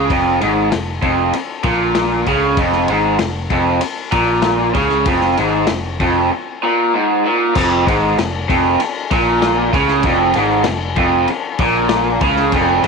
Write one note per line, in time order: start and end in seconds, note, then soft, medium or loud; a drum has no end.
0.10 0.39 F1 loud
0.10 0.40 F2 loud
0.10 kick loud
0.10 ride medium
0.41 0.71 G#1 loud
0.41 0.71 G#2 loud
0.41 ride medium
0.71 1.01 F1 medium
0.71 0.97 F2 medium
0.71 snare loud
0.71 ride loud
1.02 1.31 F1 medium
1.02 1.33 F2 loud
1.02 kick medium
1.02 ride medium
1.33 muted picked electric bass stroke soft
1.33 muted overdriven electric guitar stroke medium
1.33 ride medium
1.63 2.23 A#1 medium
1.63 2.26 A#2 loud
1.63 kick loud
1.63 ride medium
1.95 snare loud
1.95 ride loud
2.26 2.56 C#2 medium
2.26 2.58 C#3 loud
2.26 kick medium
2.26 ride medium
2.57 2.87 F1 loud
2.57 2.88 F2 loud
2.57 kick loud
2.57 ride loud
2.72 snare soft
2.88 3.18 G#1 loud
2.88 3.19 G#2 loud
2.88 ride medium
3.19 3.49 F1 medium
3.19 3.45 F2 medium
3.19 snare loud
3.19 ride loud
3.50 3.80 F1 medium
3.50 3.80 F2 loud
3.50 kick medium
3.50 ride medium
3.81 muted overdriven electric guitar stroke medium
3.81 ride loud
4.12 4.71 A#1 loud
4.12 4.74 A#2 loud
4.12 kick loud
4.12 ride medium
4.42 snare loud
4.42 ride medium
4.75 5.05 C#2 loud
4.75 5.06 C#3 loud
4.75 kick medium
4.75 ride medium
4.89 snare soft
5.05 5.36 F1 loud
5.05 5.37 F2 loud
5.05 kick loud
5.05 ride loud
5.21 snare soft
5.37 5.68 G#1 loud
5.37 5.69 G#2 loud
5.37 ride medium
5.67 5.98 F1 medium
5.67 5.94 F2 medium
5.67 snare loud
5.67 ride loud
6.00 6.29 F1 medium
6.00 6.31 F2 loud
6.00 kick medium
6.00 ride medium
6.32 muted overdriven electric guitar stroke medium
6.63 6.93 A#2 medium
6.94 7.24 G#2 loud
7.25 7.55 A#2 loud
7.54 7.85 F1 loud
7.54 7.86 F2 loud
7.54 kick loud
7.54 crash loud
7.87 8.16 G#1 loud
7.87 8.17 G#2 loud
7.87 kick loud
7.87 ride medium
8.18 8.47 F1 medium
8.18 8.43 F2 medium
8.18 snare loud
8.18 ride loud
8.49 8.78 F1 medium
8.49 8.80 F2 loud
8.49 kick loud
8.49 ride medium
8.79 muted picked electric bass stroke soft
8.79 muted overdriven electric guitar stroke medium
8.79 ride loud
9.11 9.70 A#1 loud
9.11 9.73 A#2 medium
9.11 kick loud
9.11 ride medium
9.42 snare loud
9.42 ride loud
9.73 10.03 C#2 loud
9.73 10.04 C#3 loud
9.73 kick loud
9.73 ride medium
9.88 snare soft
10.03 10.33 F1 loud
10.03 10.35 F2 loud
10.03 kick loud
10.03 ride loud
10.34 10.65 G#1 loud
10.34 10.66 G#2 loud
10.34 ride medium
10.64 10.96 F1 medium
10.64 10.92 F2 medium
10.64 snare loud
10.64 ride loud
10.96 11.26 F1 medium
10.96 11.28 F2 loud
10.96 kick loud
10.96 ride medium
11.28 muted overdriven electric guitar stroke medium
11.28 ride loud
11.59 12.18 A#1 loud
11.59 12.21 A#2 medium
11.59 kick loud
11.59 ride medium
11.89 snare loud
11.89 ride loud
12.21 12.50 C#2 loud
12.21 12.52 C#3 loud
12.21 kick loud
12.21 ride medium
12.36 snare soft
12.52 12.81 F1 loud
12.52 12.83 F2 loud
12.52 kick loud
12.52 ride loud
12.83 12.87 G#1 loud
12.83 12.87 G#2 loud
12.83 ride medium